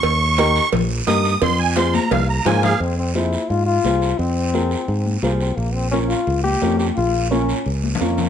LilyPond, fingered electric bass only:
\new Staff \with { instrumentName = "Fingered electric bass" } { \clef bass \time 4/4 \key f \minor \tempo 4 = 173 ees,2 bes,,4 g,4 | f,2 c,4 aes,4 | f,2 aes,4 c,4 | f,2 aes,4 c,4 |
bes,,2 des,4 f,4 | bes,,2 des,4 f,4 | }